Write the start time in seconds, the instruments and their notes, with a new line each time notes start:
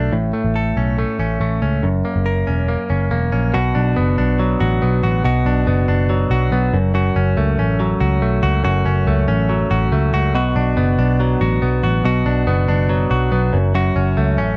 Already playing: clean electric guitar B2 A3 D4 A4
0.13 picked electric bass A1, clean electric guitar A2
0.33 clean electric guitar A3
0.44 picked electric bass A1
0.56 clean electric guitar A4
0.77 picked electric bass B1, clean electric guitar C#4
0.98 clean electric guitar A3
1.19 picked electric bass A1, clean electric guitar C#4
1.40 picked electric bass A1, clean electric guitar A3
1.62 picked electric bass C#2, clean electric guitar C#4
1.83 picked electric bass F#1, clean electric guitar F#2
2.05 clean electric guitar A#3
2.16 picked electric bass F#1
2.26 clean electric guitar A#4
2.47 picked electric bass E1, clean electric guitar C#4
2.69 clean electric guitar A#3
2.90 picked electric bass F#1, clean electric guitar C#4
3.11 picked electric bass E1, clean electric guitar A#3
3.32 picked electric bass A#1, clean electric guitar C#4
3.54 picked electric bass B1, clean electric guitar B2 F#4
3.75 picked electric bass B1, clean electric guitar D4
3.96 picked electric bass F#1, clean electric guitar B3
4.18 picked electric bass B1, clean electric guitar D4
4.39 clean electric guitar F#3
4.60 picked electric bass A1, clean electric guitar F#4
4.82 picked electric bass B1, clean electric guitar B3
5.03 picked electric bass A1, clean electric guitar F#4
5.24 picked electric bass B1, clean electric guitar B2 F#4
5.46 picked electric bass B1, clean electric guitar D4
5.67 picked electric bass F#1, clean electric guitar B3
5.88 picked electric bass F#1, clean electric guitar D4
6.10 clean electric guitar F#3
6.30 picked electric bass B1, clean electric guitar F#4
6.52 picked electric bass B1, clean electric guitar B3
6.73 picked electric bass F#1, clean electric guitar F#2
6.94 clean electric guitar F#2 F#4
7.16 picked electric bass F#1, clean electric guitar C#4
7.37 picked electric bass C#2, clean electric guitar A3
7.59 picked electric bass A1, clean electric guitar C#4
7.80 clean electric guitar F#3
8.00 picked electric bass C#2, clean electric guitar F#4
8.22 picked electric bass B1, clean electric guitar A3
8.43 picked electric bass C#2, clean electric guitar F#4
8.64 picked electric bass F#1, clean electric guitar F#2 F#4
8.86 picked electric bass F#1, clean electric guitar C#4
9.07 picked electric bass C#2, clean electric guitar A3
9.28 picked electric bass A1, clean electric guitar C#4
9.49 clean electric guitar F#3
9.71 picked electric bass A1, clean electric guitar F#4
9.92 picked electric bass C#2, clean electric guitar A3
10.13 picked electric bass C#2, clean electric guitar F#4
10.35 picked electric bass B1, clean electric guitar B2 F#4
10.56 picked electric bass B1, clean electric guitar D4
10.77 picked electric bass F#1, clean electric guitar B3
10.99 picked electric bass B1, clean electric guitar D4
11.20 clean electric guitar F#3
11.41 picked electric bass A1, clean electric guitar F#4
11.62 picked electric bass B1, clean electric guitar B3
11.84 picked electric bass A1, clean electric guitar F#4
12.05 picked electric bass B1, clean electric guitar B2 F#4
12.26 picked electric bass B1, clean electric guitar D4
12.47 picked electric bass F#1, clean electric guitar B3
12.68 picked electric bass F#1, clean electric guitar D4
12.89 clean electric guitar F#3
13.11 picked electric bass B1, clean electric guitar F#4
13.32 picked electric bass B1, clean electric guitar B3
13.53 picked electric bass F#1, clean electric guitar F#2
13.75 clean electric guitar F#2 F#4
13.96 picked electric bass F#1, clean electric guitar C#4
14.17 picked electric bass C#2, clean electric guitar A3
14.38 picked electric bass A1, clean electric guitar C#4